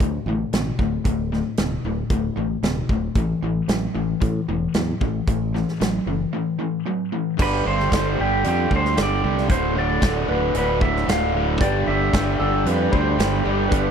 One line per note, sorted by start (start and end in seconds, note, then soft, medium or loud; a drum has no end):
0.00 0.18 D2 medium
0.00 0.25 D2 medium
0.00 0.25 A2 medium
0.00 kick loud
0.00 closed hi-hat medium
0.26 0.44 A1 medium
0.26 0.51 D2 medium
0.26 0.51 A2 medium
0.53 0.71 A1 medium
0.53 0.77 D2 medium
0.53 0.77 B2 medium
0.53 snare loud
0.53 closed hi-hat medium
0.79 0.97 D1 medium
0.79 1.03 D2 medium
0.79 1.03 A2 medium
0.79 kick medium
1.05 1.41 D1 medium
1.05 1.30 D2 medium
1.05 1.30 A2 medium
1.05 kick loud
1.05 closed hi-hat medium
1.32 1.56 D2 medium
1.32 1.56 A2 medium
1.32 snare soft
1.57 1.76 D1 medium
1.57 1.82 D2 medium
1.57 1.82 B2 medium
1.57 snare loud
1.57 closed hi-hat medium
1.84 2.02 D1 medium
1.84 2.09 D2 medium
1.84 2.09 A2 medium
2.10 2.29 D1 medium
2.10 2.35 D2 medium
2.10 2.35 A2 medium
2.10 kick loud
2.10 closed hi-hat medium
2.37 2.55 A1 medium
2.37 2.61 D2 medium
2.37 2.61 A2 medium
2.63 2.81 D1 medium
2.63 2.87 D2 medium
2.63 2.88 B2 medium
2.63 snare medium
2.63 closed hi-hat medium
2.89 3.07 D1 medium
2.89 3.14 D2 medium
2.89 3.14 A2 medium
2.89 kick medium
3.15 3.33 A1 medium
3.15 3.40 A2 medium
3.15 3.41 E3 medium
3.15 kick loud
3.15 closed hi-hat medium
3.43 3.60 A1 medium
3.43 3.67 A2 medium
3.43 3.67 E3 medium
3.69 3.87 A1 medium
3.69 3.93 A2 medium
3.69 3.93 F#3 medium
3.69 snare loud
3.69 closed hi-hat medium
3.95 4.13 A1 medium
3.95 4.19 A2 medium
3.95 4.19 E3 medium
4.20 4.45 A2 medium
4.20 4.40 A2 medium
4.20 4.45 E3 medium
4.20 kick loud
4.20 closed hi-hat medium
4.49 4.66 E1 medium
4.49 4.73 A2 medium
4.49 4.72 E3 medium
4.74 4.92 E2 medium
4.74 4.99 A2 medium
4.74 4.99 F#3 medium
4.74 snare medium
4.74 closed hi-hat medium
5.01 5.19 A1 medium
5.01 5.25 A2 medium
5.01 5.25 E3 medium
5.01 kick medium
5.28 5.63 A1 medium
5.28 5.52 A2 medium
5.28 5.52 E3 medium
5.28 kick loud
5.28 closed hi-hat medium
5.54 5.78 A2 medium
5.54 5.78 E3 medium
5.54 snare soft
5.68 snare soft
5.80 5.98 A1 medium
5.80 6.04 A2 medium
5.80 6.04 F#3 medium
5.80 snare loud
5.80 closed hi-hat medium
6.06 6.24 F#1 medium
6.06 6.31 A2 medium
6.06 6.31 E3 medium
6.33 6.57 A2 medium
6.33 6.57 E3 medium
6.60 6.84 A2 medium
6.60 6.83 E3 medium
6.87 7.10 A2 medium
6.87 7.10 F#3 medium
7.12 7.36 A2 medium
7.12 7.36 E3 medium
7.37 7.64 G1 medium
7.37 7.64 G2 medium
7.37 7.64 D3 medium
7.37 7.65 G3 loud
7.37 kick loud
7.37 crash loud
7.42 7.67 B4 medium
7.65 7.90 G1 medium
7.65 7.88 G2 medium
7.65 7.89 D3 medium
7.65 7.90 G3 medium
7.65 8.21 C5 medium
7.80 snare soft
7.90 8.17 G1 medium
7.90 8.16 G2 medium
7.90 8.17 D3 medium
7.90 8.18 G3 loud
7.90 kick medium
7.90 snare loud
7.90 closed hi-hat medium
8.18 8.44 G1 medium
8.18 8.42 G2 medium
8.18 8.43 D3 medium
8.18 8.43 G3 medium
8.18 8.46 G4 medium
8.43 8.70 F2 medium
8.43 8.69 G2 medium
8.43 8.69 D3 loud
8.43 8.70 G3 loud
8.43 closed hi-hat medium
8.48 8.71 G4 medium
8.70 8.96 D2 medium
8.70 8.95 G2 medium
8.70 8.95 D3 medium
8.70 8.97 G3 medium
8.70 kick medium
8.76 9.00 C5 medium
8.85 snare soft
8.97 9.22 G1 medium
8.97 9.22 G2 medium
8.97 9.23 D3 medium
8.97 9.23 G3 loud
8.97 snare loud
8.97 closed hi-hat medium
9.03 9.37 D5 loud
9.23 9.49 C2 medium
9.23 9.48 G2 medium
9.23 9.48 D3 medium
9.23 9.49 G3 medium
9.38 snare soft
9.50 9.99 D1 loud
9.50 9.75 D2 medium
9.50 9.75 A2 medium
9.50 9.76 D3 medium
9.50 9.78 C5 medium
9.50 kick loud
9.50 closed hi-hat medium
9.76 10.01 D2 medium
9.76 10.02 A2 medium
9.76 10.02 D3 medium
9.76 10.32 D5 loud
10.02 10.27 D1 medium
10.02 10.28 D2 medium
10.02 10.29 A2 medium
10.02 10.30 D3 loud
10.02 kick medium
10.02 snare loud
10.02 closed hi-hat medium
10.29 10.53 D1 medium
10.29 10.55 D2 medium
10.29 10.55 A2 medium
10.29 10.55 D3 medium
10.29 10.56 B4 medium
10.55 11.05 D1 medium
10.55 10.81 D2 loud
10.55 10.82 A2 medium
10.55 10.83 D3 loud
10.55 10.81 B4 loud
10.55 closed hi-hat medium
10.81 11.08 D2 medium
10.81 11.09 A2 medium
10.81 11.09 D3 medium
10.81 11.09 E5 loud
10.81 kick medium
10.96 snare soft
11.08 11.57 D1 medium
11.08 11.34 D2 loud
11.08 11.34 A2 medium
11.08 11.35 D3 medium
11.08 11.46 F5 loud
11.08 snare loud
11.08 closed hi-hat medium
11.35 11.59 D2 medium
11.35 11.59 A2 medium
11.35 11.60 D3 medium
11.60 11.85 G1 loud
11.60 11.88 G2 medium
11.60 11.88 D3 loud
11.60 13.91 G3 medium
11.60 11.89 G3 medium
11.60 13.91 D4 medium
11.60 12.45 D4 medium
11.60 12.46 G4 medium
11.60 12.46 B4 medium
11.60 11.88 D5 loud
11.60 13.91 B5 medium
11.60 kick loud
11.60 closed hi-hat medium
11.87 12.12 G1 medium
11.87 12.13 G2 medium
11.87 12.13 D3 medium
11.87 12.15 G3 medium
11.87 12.41 E5 loud
12.13 12.38 G1 medium
12.13 12.39 G2 medium
12.13 12.39 D3 loud
12.13 12.40 G3 medium
12.13 kick medium
12.13 snare loud
12.13 closed hi-hat medium
12.39 12.64 G1 medium
12.39 12.65 G2 medium
12.39 12.66 D3 medium
12.39 12.67 G3 medium
12.39 12.67 A4 medium
12.65 12.90 F2 medium
12.65 12.91 G2 medium
12.65 12.91 D3 medium
12.65 12.92 G3 loud
12.65 12.92 B4 loud
12.65 closed hi-hat medium
12.90 13.17 D2 medium
12.90 13.17 G2 medium
12.90 13.17 D3 medium
12.90 13.19 G3 medium
12.90 13.54 D4 medium
12.90 13.55 G4 medium
12.90 13.46 C5 loud
12.90 13.55 B5 medium
12.90 kick medium
13.18 13.43 G1 medium
13.18 13.43 G2 medium
13.18 13.44 D3 loud
13.18 13.45 G3 loud
13.18 snare loud
13.18 closed hi-hat medium
13.44 13.70 G1 medium
13.44 13.68 G2 medium
13.44 13.69 D3 medium
13.44 13.70 G3 loud
13.44 13.71 G4 medium
13.69 13.91 G1 loud
13.69 13.91 G2 medium
13.69 13.91 D3 loud
13.69 13.91 G3 loud
13.69 13.91 D4 medium
13.69 13.91 G4 medium
13.69 13.91 B4 loud
13.69 13.91 B4 medium
13.69 kick loud
13.69 closed hi-hat medium